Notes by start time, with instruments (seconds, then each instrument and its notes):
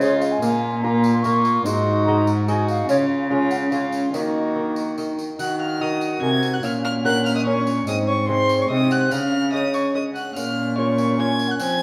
Already playing: lute C#3, cello C#3
0.00 bassoon G#3, violin F4, lute F4 G#4, flute C#5, tambourine
0.21 flute F5, tambourine
0.32 flute G#5
0.42 cello A#2, lute A#2, bassoon A#3, violin F4, tambourine
0.83 bassoon A#3, violin F4, lute F4 A#4, flute A#5
1.04 tambourine
1.14 flute C6
1.23 bassoon A#3, violin F4, lute F4 A#4, flute C#6, tambourine
1.45 tambourine
1.65 cello G#2, lute G#2, bassoon D#4, violin F#4, flute C6, tambourine
2.06 lute G#3 F#4 D#5, flute A#5
2.27 tambourine
2.47 lute G#3 F#4 D#5, bassoon D#4, violin F#4, flute G#5, tambourine
2.68 flute F5, tambourine
2.89 cello C#3, lute C#3, bassoon C#4, violin F4, flute C#5, tambourine
3.21 flute F5
3.30 lute G#3 F4 C#5, bassoon C#4, violin F4, flute G#5
3.51 flute F#5, tambourine
3.72 lute G#3 F4 C#5, bassoon C#4, violin F4, flute F5, tambourine
3.92 tambourine
4.13 cello D#3, lute D#3, bassoon A#3, violin F#4, flute D#5, tambourine
4.56 lute D#4 A#4
4.76 tambourine
4.98 lute D#4 A#4, tambourine
5.19 tambourine
5.39 cello D#3, lute D#3, bassoon F#4, flute F#5, violin F#6, tambourine
5.59 flute F5, violin F6
5.80 lute D#4 A#4, bassoon F#4, flute D#5, violin D#6
6.01 tambourine
6.21 cello C3, lute C3 D#4 A#4, flute G#5, violin G#6
6.43 tambourine
6.53 flute F#5, violin F#6
6.62 cello A#2, lute A#2, bassoon C#4, flute F5, violin F6, tambourine
6.82 flute F5, violin F6
7.03 lute C#4 A#4, flute F#5, violin F#6
7.25 flute F5, violin F6, tambourine
7.35 flute D#5, violin D#6
7.46 bassoon C#4, lute C#4 A#4, flute C#5, violin C#6
7.67 tambourine
7.87 lute G#2, cello G#2, bassoon C4, flute D#5, violin D#6, tambourine
8.07 flute C#5, violin C#6
8.28 lute G#3 D#4 C5, bassoon C4, flute C5, violin C6
8.49 tambourine
8.59 flute C#5, violin C#6
8.69 cello C3, lute C3 G#3 D#4 C5, bassoon C4, flute D#5, violin D#6
8.91 flute F#5, violin F#6, tambourine
9.10 lute C#3, cello C#3, bassoon C#4, flute F5, violin F6, tambourine
9.52 lute G#3 C#4 C#5, flute D#5, violin D#6
9.73 flute C#5, violin C#6, tambourine
9.93 lute G#3 C#4 C#5, flute D#5, violin D#6
10.14 flute F#5, violin F#6, tambourine
10.35 cello A#2, lute A#2, bassoon C#4, flute F5, violin F6, tambourine
10.77 lute A#3 F4 C#5, bassoon C#4, flute C#5, violin C#6
10.98 tambourine
11.18 lute A#3 F4 C#5, flute G#5, violin G#6
11.39 tambourine
11.48 flute F#5, violin F#6
11.58 cello F3, lute F3, bassoon C4, flute G#5, violin G#6, tambourine